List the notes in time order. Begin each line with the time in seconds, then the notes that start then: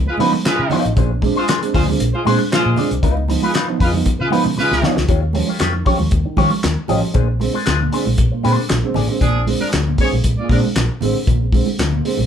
0.06 G#3 F4 B4, muted clean electric guitar stroke, muted conga
0.18 C#3 F3 B3 D#4 F4 B4, open hi-hat, high conga
0.32 muted clean electric guitar stroke, high conga
0.44 C#3 G#3 F4 B4, muted clean electric guitar stroke, snare, clap, closed hi-hat, muted conga
0.59 C#3, muted clean electric guitar stroke
0.70 F3 B3 D#4 F4 C#5, open hi-hat, low conga
0.85 A1 B3 D#4, muted clean electric guitar stroke, closed hi-hat
0.96 A#1 A#2 F3 D4 G#4 C5, kick, closed hi-hat, low conga
1.11 C4 D4, muted clean electric guitar stroke
1.22 G#3 C4 D4, muted clean electric guitar stroke, kick, open hi-hat, high conga
1.35 G#3 D4 F4 G#4 C5, high conga
1.48 D4 G#4 C5, snare, clap, closed hi-hat, muted conga
1.62 G#3 C4 D4, muted clean electric guitar stroke, closed hi-hat
1.74 D2 A#2 F3 G#3 D4 F4 G#4 C5, kick, open hi-hat
1.88 G#3 C4 D4, muted clean electric guitar stroke, high conga, low conga
2.00 A#1, closed hi-hat
2.13 G#3 F4 C5, muted clean electric guitar stroke, muted conga
2.25 A#2 G#3 C4 D4 G#4 C5, open hi-hat, high conga
2.39 muted clean electric guitar stroke, high conga
2.51 A#2 F3 G#3 F4 C5, muted clean electric guitar stroke, snare, clap, closed hi-hat, muted conga
2.65 A#2, muted conga
2.76 G#3 C4 D4 G#4 D5, open hi-hat, low conga
2.91 C2 C4 D4, muted clean electric guitar stroke, closed hi-hat
3.03 C#2 C#3 D#4 F4 B4, kick, closed hi-hat, low conga
3.16 B3 D#4, muted clean electric guitar stroke, muted conga
3.28 F3 B3 D#4, muted clean electric guitar stroke, open hi-hat, high conga
3.42 G#3 D#4 F4 B4, high conga
3.54 D#4 F4 B4, snare, clap, closed hi-hat
3.68 F3 B3 D#4, muted clean electric guitar stroke
3.80 F2 C#3 G#3 D#4 F4 B4, kick, open hi-hat
3.93 F3 B3 D#4, high conga, low conga
4.06 kick, closed hi-hat
4.19 C#3 G#3 F4 B4, muted clean electric guitar stroke
4.31 F3 B3 D#4 F4 B4, open hi-hat, high conga
4.45 C#3, muted clean electric guitar stroke, high conga
4.57 C#3 G#3 F4 B4, muted clean electric guitar stroke, snare
4.71 C#2, snare, muted conga
4.82 F3 B3 D#4 F4 C#5, snare, low conga
4.96 C#2 B3 D#4, muted clean electric guitar stroke, snare
5.08 D#2 D#3 F4 G4 C#5, kick, closed hi-hat, muted conga, low conga
5.22 G3 C#4, muted clean electric guitar stroke, muted conga
5.33 F3 G3 C#4, muted clean electric guitar stroke, open hi-hat, high conga
5.47 F4 G4 C#5, high conga
5.59 F2 G3 C#4 F4 G4 C#5, snare, clap, closed hi-hat, muted conga
5.73 D#3, muted clean electric guitar stroke, muted conga
5.85 F3 G3 C#4 F4 G4 C#5, kick, open hi-hat
5.99 D#2, muted clean electric guitar stroke, high conga
6.11 D#2 G3 C#4, kick, closed hi-hat
6.25 D#3, muted clean electric guitar stroke
6.37 D#3 F3 G3 C#4 F4 G4 C#5, kick, open hi-hat, high conga
6.50 muted clean electric guitar stroke, high conga
6.63 D#2, muted clean electric guitar stroke, snare, clap, closed hi-hat, muted conga
6.76 muted conga
6.88 A1 F3 G3 C#4 F4 G4 D#5, open hi-hat, low conga
7.01 muted clean electric guitar stroke
7.14 A#1 A#2 D4 G#4 C5, kick, closed hi-hat, low conga
7.28 G#3 C4, muted clean electric guitar stroke
7.40 D3 G#3 C4, muted clean electric guitar stroke, open hi-hat, high conga
7.53 D4 G#4 C5, high conga
7.66 D2 G#3 C4 D4 G#4 C5, snare, clap, closed hi-hat, muted conga
7.79 A#2, muted clean electric guitar stroke, muted conga
7.92 D3 G#3 C4 D4 G#4 C5, open hi-hat
8.05 A#1, muted clean electric guitar stroke, high conga
8.18 A#1 G#3 C4, kick, closed hi-hat
8.31 A#2, muted clean electric guitar stroke
8.43 A#2 D3 G#3 C4 D4 G#4 C5, open hi-hat, high conga
8.57 muted clean electric guitar stroke, high conga
8.69 A#1, muted clean electric guitar stroke, snare, clap, closed hi-hat
8.83 D3 G#3 C4, muted conga
8.94 A1 A#2 D4 G#4 D5, open hi-hat, low conga
9.09 D3 G#3 C4, muted clean electric guitar stroke
9.21 A#1 A#2 F3 D4 G#4, kick, closed hi-hat, low conga
9.35 G#3 C4
9.47 D3 G#3 C4, open hi-hat, high conga
9.60 F3 D4 A#4, high conga
9.72 D2 G#3 C4, snare, clap, closed hi-hat, muted conga
9.87 A#2
9.98 D3 G#3 C4 G#4 C#5, kick, open hi-hat
10.12 A#1, high conga
10.24 A#1 G#3 C4, kick, closed hi-hat
10.38 A#2 G#3 F4 D5, muted conga
10.49 A#2 D3 F3 G#3 C4 D4 A#4, kick, open hi-hat, high conga
10.64 high conga
10.76 A#1, snare, clap, closed hi-hat
11.01 A1 D3 G#3 C4, open hi-hat, low conga
11.27 A#1 A#2, kick, closed hi-hat, muted conga, low conga
11.41 G#3 C4
11.52 D3 G#3 C4, kick, open hi-hat, high conga
11.66 high conga
11.79 D2 G#3 C4, snare, clap, closed hi-hat, muted conga
11.93 A#2
12.04 D3 G#3 C4, open hi-hat
12.17 A#1, high conga